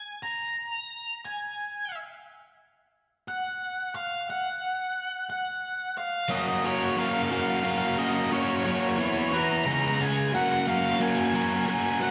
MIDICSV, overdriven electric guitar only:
0, 0, Header, 1, 2, 480
1, 0, Start_track
1, 0, Key_signature, 6, "major"
1, 0, Tempo, 673401
1, 160, Time_signature, 6, 3, 24, 8
1, 8631, End_track
2, 0, Start_track
2, 0, Title_t, "Overdriven electric guitar"
2, 0, Program_c, 0, 29
2, 4481, Note_on_c, 0, 54, 89
2, 4487, Note_on_c, 0, 58, 80
2, 4491, Note_on_c, 0, 61, 101
2, 4493, Note_on_c, 0, 66, 100
2, 4500, Note_on_c, 0, 70, 92
2, 4721, Note_off_c, 0, 54, 0
2, 4725, Note_off_c, 0, 58, 0
2, 4729, Note_on_c, 0, 54, 78
2, 4730, Note_off_c, 0, 61, 0
2, 4733, Note_off_c, 0, 66, 0
2, 4733, Note_on_c, 0, 58, 73
2, 4738, Note_off_c, 0, 70, 0
2, 4739, Note_on_c, 0, 61, 78
2, 4741, Note_on_c, 0, 66, 88
2, 4746, Note_on_c, 0, 70, 81
2, 4955, Note_off_c, 0, 54, 0
2, 4961, Note_off_c, 0, 58, 0
2, 4964, Note_on_c, 0, 54, 92
2, 4966, Note_off_c, 0, 61, 0
2, 4969, Note_off_c, 0, 66, 0
2, 4969, Note_on_c, 0, 58, 91
2, 4972, Note_off_c, 0, 70, 0
2, 4974, Note_on_c, 0, 61, 92
2, 4978, Note_on_c, 0, 66, 92
2, 4981, Note_on_c, 0, 70, 97
2, 5194, Note_off_c, 0, 54, 0
2, 5202, Note_off_c, 0, 58, 0
2, 5202, Note_off_c, 0, 61, 0
2, 5203, Note_on_c, 0, 54, 81
2, 5209, Note_off_c, 0, 66, 0
2, 5210, Note_on_c, 0, 58, 78
2, 5211, Note_on_c, 0, 61, 85
2, 5214, Note_off_c, 0, 70, 0
2, 5217, Note_on_c, 0, 66, 89
2, 5223, Note_on_c, 0, 70, 82
2, 5437, Note_off_c, 0, 54, 0
2, 5443, Note_off_c, 0, 58, 0
2, 5445, Note_on_c, 0, 54, 94
2, 5448, Note_off_c, 0, 61, 0
2, 5452, Note_on_c, 0, 58, 87
2, 5454, Note_off_c, 0, 66, 0
2, 5456, Note_off_c, 0, 70, 0
2, 5456, Note_on_c, 0, 61, 99
2, 5462, Note_on_c, 0, 66, 96
2, 5464, Note_on_c, 0, 70, 89
2, 5679, Note_off_c, 0, 54, 0
2, 5685, Note_off_c, 0, 58, 0
2, 5688, Note_on_c, 0, 54, 91
2, 5689, Note_off_c, 0, 61, 0
2, 5694, Note_off_c, 0, 66, 0
2, 5694, Note_on_c, 0, 58, 84
2, 5696, Note_off_c, 0, 70, 0
2, 5697, Note_on_c, 0, 61, 91
2, 5702, Note_on_c, 0, 66, 94
2, 5705, Note_on_c, 0, 70, 90
2, 5917, Note_off_c, 0, 54, 0
2, 5922, Note_off_c, 0, 58, 0
2, 5926, Note_on_c, 0, 54, 87
2, 5928, Note_off_c, 0, 61, 0
2, 5931, Note_off_c, 0, 66, 0
2, 5931, Note_on_c, 0, 58, 83
2, 5936, Note_off_c, 0, 70, 0
2, 5937, Note_on_c, 0, 61, 91
2, 5940, Note_on_c, 0, 66, 93
2, 5944, Note_on_c, 0, 70, 105
2, 6158, Note_off_c, 0, 54, 0
2, 6164, Note_off_c, 0, 58, 0
2, 6166, Note_on_c, 0, 54, 81
2, 6169, Note_off_c, 0, 61, 0
2, 6172, Note_off_c, 0, 66, 0
2, 6173, Note_on_c, 0, 58, 80
2, 6175, Note_off_c, 0, 70, 0
2, 6178, Note_on_c, 0, 61, 92
2, 6180, Note_on_c, 0, 66, 87
2, 6184, Note_on_c, 0, 70, 85
2, 6393, Note_off_c, 0, 54, 0
2, 6396, Note_off_c, 0, 58, 0
2, 6399, Note_off_c, 0, 61, 0
2, 6400, Note_off_c, 0, 66, 0
2, 6401, Note_off_c, 0, 70, 0
2, 6402, Note_on_c, 0, 52, 99
2, 6406, Note_on_c, 0, 59, 102
2, 6413, Note_on_c, 0, 64, 104
2, 6417, Note_on_c, 0, 71, 110
2, 6632, Note_off_c, 0, 52, 0
2, 6639, Note_off_c, 0, 59, 0
2, 6641, Note_on_c, 0, 52, 84
2, 6642, Note_off_c, 0, 64, 0
2, 6645, Note_off_c, 0, 71, 0
2, 6647, Note_on_c, 0, 59, 87
2, 6650, Note_on_c, 0, 64, 86
2, 6654, Note_on_c, 0, 71, 93
2, 6869, Note_off_c, 0, 52, 0
2, 6872, Note_off_c, 0, 59, 0
2, 6874, Note_off_c, 0, 64, 0
2, 6876, Note_off_c, 0, 71, 0
2, 6884, Note_on_c, 0, 49, 108
2, 6893, Note_on_c, 0, 56, 102
2, 6896, Note_on_c, 0, 61, 107
2, 6899, Note_on_c, 0, 68, 120
2, 7116, Note_off_c, 0, 49, 0
2, 7122, Note_off_c, 0, 56, 0
2, 7125, Note_on_c, 0, 49, 90
2, 7128, Note_off_c, 0, 61, 0
2, 7130, Note_off_c, 0, 68, 0
2, 7131, Note_on_c, 0, 56, 87
2, 7137, Note_on_c, 0, 61, 96
2, 7139, Note_on_c, 0, 68, 110
2, 7350, Note_off_c, 0, 49, 0
2, 7353, Note_off_c, 0, 56, 0
2, 7356, Note_off_c, 0, 61, 0
2, 7357, Note_off_c, 0, 68, 0
2, 7362, Note_on_c, 0, 54, 84
2, 7370, Note_on_c, 0, 58, 90
2, 7372, Note_on_c, 0, 61, 108
2, 7378, Note_on_c, 0, 66, 105
2, 7379, Note_on_c, 0, 70, 100
2, 7597, Note_off_c, 0, 54, 0
2, 7602, Note_off_c, 0, 58, 0
2, 7605, Note_off_c, 0, 61, 0
2, 7605, Note_on_c, 0, 54, 78
2, 7610, Note_off_c, 0, 66, 0
2, 7610, Note_on_c, 0, 58, 81
2, 7614, Note_off_c, 0, 70, 0
2, 7614, Note_on_c, 0, 61, 97
2, 7619, Note_on_c, 0, 66, 89
2, 7623, Note_on_c, 0, 70, 88
2, 7832, Note_off_c, 0, 54, 0
2, 7837, Note_off_c, 0, 58, 0
2, 7841, Note_on_c, 0, 54, 90
2, 7844, Note_off_c, 0, 61, 0
2, 7846, Note_off_c, 0, 66, 0
2, 7846, Note_on_c, 0, 58, 101
2, 7851, Note_off_c, 0, 70, 0
2, 7852, Note_on_c, 0, 61, 106
2, 7854, Note_on_c, 0, 66, 95
2, 7859, Note_on_c, 0, 70, 98
2, 8070, Note_off_c, 0, 54, 0
2, 8076, Note_off_c, 0, 58, 0
2, 8079, Note_on_c, 0, 54, 78
2, 8080, Note_off_c, 0, 61, 0
2, 8084, Note_on_c, 0, 58, 92
2, 8085, Note_off_c, 0, 66, 0
2, 8088, Note_off_c, 0, 70, 0
2, 8088, Note_on_c, 0, 61, 97
2, 8093, Note_on_c, 0, 66, 94
2, 8097, Note_on_c, 0, 70, 95
2, 8311, Note_off_c, 0, 54, 0
2, 8318, Note_off_c, 0, 58, 0
2, 8320, Note_on_c, 0, 54, 98
2, 8323, Note_off_c, 0, 61, 0
2, 8325, Note_off_c, 0, 66, 0
2, 8326, Note_on_c, 0, 58, 93
2, 8329, Note_off_c, 0, 70, 0
2, 8332, Note_on_c, 0, 61, 102
2, 8334, Note_on_c, 0, 66, 101
2, 8338, Note_on_c, 0, 70, 99
2, 8547, Note_off_c, 0, 54, 0
2, 8553, Note_off_c, 0, 58, 0
2, 8556, Note_on_c, 0, 54, 90
2, 8558, Note_off_c, 0, 61, 0
2, 8562, Note_on_c, 0, 58, 84
2, 8563, Note_off_c, 0, 66, 0
2, 8567, Note_off_c, 0, 70, 0
2, 8567, Note_on_c, 0, 61, 97
2, 8572, Note_on_c, 0, 66, 100
2, 8575, Note_on_c, 0, 70, 108
2, 8631, Note_off_c, 0, 54, 0
2, 8631, Note_off_c, 0, 58, 0
2, 8631, Note_off_c, 0, 61, 0
2, 8631, Note_off_c, 0, 66, 0
2, 8631, Note_off_c, 0, 70, 0
2, 8631, End_track
0, 0, End_of_file